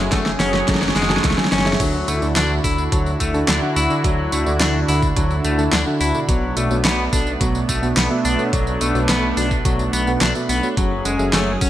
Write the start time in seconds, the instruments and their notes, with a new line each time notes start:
Already playing: analog synth pad F#3 C#4 G#4
0.12 detuned saw bass F#1, fm electric piano F#3 C#4 G#4 A4 F#5, clean electric guitar A3, kick, snare, closed hi-hat
0.26 snare
0.40 detuned saw bass F#1, fm electric piano F#3 C#4 G#4 A4 F#5, clean electric guitar C#4, snare, open hi-hat
0.54 snare
0.68 detuned saw bass F#1, fm electric piano F#3 C#4 G#4 A4 A5, clean electric guitar F#3, kick, snare, closed hi-hat
0.75 snare
0.82 snare
0.89 snare
0.96 detuned saw bass F#1, clean electric guitar G#3, snare, open hi-hat
1.03 snare
1.10 fm electric piano F#3 C#4 G#4 A4 A5, snare
1.17 snare
1.24 detuned saw bass C#2, clean electric guitar A3, kick, snare, closed hi-hat
1.31 snare
1.38 fm electric piano F#3 C#4 G#4 A4 G#5, snare
1.45 snare
1.52 detuned saw bass F#1, clean electric guitar C#4, snare, open hi-hat
1.59 snare
1.66 fm electric piano C#4 G#4 A4 E5, snare
1.73 snare
1.80 detuned saw bass D2, fm electric piano D3 D4 F#4 A4, analog synth pad D3 D4 E4 F#4, clean electric guitar F#3, kick, closed hi-hat, crash, tambourine
2.08 detuned saw bass D2, fm electric piano D3 D4 F#4 A4 E5, clean electric guitar A3, closed hi-hat, tambourine
2.22 detuned saw bass D2, fm electric piano D3 D4 F#4 A4 D5, tambourine
2.36 detuned saw bass D2, fm electric piano D3 D4 F#4 A4 E5, clean electric guitar D4, snare, clap, closed hi-hat, tambourine
2.64 detuned saw bass D2, fm electric piano D3 D4 F#4 A4 E5, clean electric guitar E4, kick, open hi-hat, tambourine
2.78 tambourine
2.92 detuned saw bass D2, fm electric piano D3 D4 F#4 A4 A5, clean electric guitar F#3, kick, closed hi-hat, tambourine
3.06 tambourine
3.20 detuned saw bass D2, clean electric guitar A3, kick, closed hi-hat, tambourine
3.34 fm electric piano D3 D4 F#4 A4 A5, tambourine
3.48 detuned saw bass D2, clean electric guitar D4, snare, clap, closed hi-hat, tambourine
3.62 fm electric piano D3 D4 F#4 A4 F#5
3.76 detuned saw bass D2, clean electric guitar E4, open hi-hat, tambourine
3.90 fm electric piano D3 D4 F#4 A4 D5, tambourine
4.04 detuned saw bass D2, fm electric piano D3 D4 F#4 A4 E5, clean electric guitar F#3, kick, closed hi-hat, tambourine
4.32 detuned saw bass D2, fm electric piano D3 D4 F#4 A4 E5, clean electric guitar A3, closed hi-hat, tambourine
4.46 detuned saw bass D2, fm electric piano D3 D4 F#4 A4 D5, tambourine
4.60 detuned saw bass D2, fm electric piano D3 D4 F#4 A4 E5, clean electric guitar D4, snare, clap, closed hi-hat, tambourine
4.88 detuned saw bass D2, fm electric piano D3 D4 F#4 A4 E5, clean electric guitar E4, open hi-hat, tambourine
5.02 kick, tambourine
5.16 detuned saw bass D2, fm electric piano D3 D4 F#4 A4 A5, clean electric guitar F#3, kick, closed hi-hat, tambourine
5.31 tambourine
5.45 detuned saw bass D2, clean electric guitar A3, closed hi-hat, tambourine
5.58 fm electric piano D3 D4 F#4 A4 A5, tambourine
5.73 detuned saw bass D2, clean electric guitar D4, snare, clap, closed hi-hat, tambourine
5.87 fm electric piano D3 D4 F#4 A4 F#5
6.01 detuned saw bass D2, clean electric guitar E4, open hi-hat, tambourine
6.14 fm electric piano B2 D4 F#4 A4 D5, tambourine
6.29 detuned saw bass B1, fm electric piano B2 B3 F#4 A4 D5, clean electric guitar F#3, analog synth pad A3 B3 D4, kick, closed hi-hat, tambourine
6.57 detuned saw bass B1, fm electric piano B2 B3 F#4 A4 D5, clean electric guitar A3, closed hi-hat, tambourine
6.71 detuned saw bass B1, fm electric piano B2 B3 F#4 A4 C#5, tambourine
6.85 detuned saw bass B1, fm electric piano B2 B3 F#4 D5, clean electric guitar B3, snare, clap, closed hi-hat, tambourine
7.13 detuned saw bass B1, fm electric piano B2 B3 F#4 A4 D5, clean electric guitar D4, kick, open hi-hat, tambourine
7.27 tambourine
7.41 detuned saw bass B1, fm electric piano B2 B3 F#4 A4 F#5, clean electric guitar F#3, kick, closed hi-hat, tambourine
7.55 tambourine
7.69 detuned saw bass B1, clean electric guitar A3, kick, closed hi-hat, tambourine
7.83 fm electric piano B2 B3 F#4 A4 F#5, tambourine
7.97 detuned saw bass B1, clean electric guitar B3, snare, clap, closed hi-hat, tambourine
8.11 fm electric piano B2 B3 F#4 A4 E5
8.25 detuned saw bass B1, clean electric guitar D4, open hi-hat, tambourine
8.39 fm electric piano B2 B3 F#4 A4 C#5, tambourine
8.53 detuned saw bass B1, fm electric piano B2 B3 F#4 A4 D5, clean electric guitar F#3, kick, closed hi-hat, tambourine
8.67 tambourine
8.81 detuned saw bass B1, fm electric piano B2 B3 F#4 A4 D5, clean electric guitar A3, closed hi-hat, tambourine
8.95 detuned saw bass B1, fm electric piano B2 B3 F#4 A4 C#5, tambourine
9.09 detuned saw bass B1, fm electric piano B2 B3 F#4 A4 D5, clean electric guitar B3, snare, clap, closed hi-hat, tambourine
9.37 detuned saw bass B1, fm electric piano B2 B3 F#4 A4 D5, clean electric guitar D4, open hi-hat, tambourine
9.51 kick, tambourine
9.65 detuned saw bass B1, fm electric piano B2 B3 F#4 A4 F#5, clean electric guitar F#3, kick, closed hi-hat, tambourine
9.79 tambourine
9.93 detuned saw bass B1, clean electric guitar B3, closed hi-hat, tambourine
10.07 fm electric piano B2 B3 F#4 A4 F#5, tambourine
10.21 detuned saw bass B1, clean electric guitar D4, snare, clap, closed hi-hat, tambourine
10.35 fm electric piano B2 B3 F#4 A4 E5, tambourine
10.49 detuned saw bass B1, clean electric guitar B3, open hi-hat, tambourine
10.63 fm electric piano B3 F#4 A4 C#5, tambourine
10.77 detuned saw bass F#1, fm electric piano F#3 C#4 G#4 A4 F#5, clean electric guitar F#3, analog synth pad F#3 C#4 G#4, kick, closed hi-hat, tambourine
11.05 detuned saw bass F#1, fm electric piano F#3 C#4 G#4 A4 F#5, clean electric guitar G#3, closed hi-hat, tambourine
11.19 detuned saw bass F#1, fm electric piano F#3 C#4 G#4 A4 E5, tambourine
11.33 detuned saw bass F#1, fm electric piano F#3 C#4 G#4 A4 F#5, clean electric guitar A3, snare, clap, closed hi-hat, tambourine
11.61 detuned saw bass F#1, fm electric piano F#3 C#4 G#4 A4 F#5, clean electric guitar C#4, kick, open hi-hat, tambourine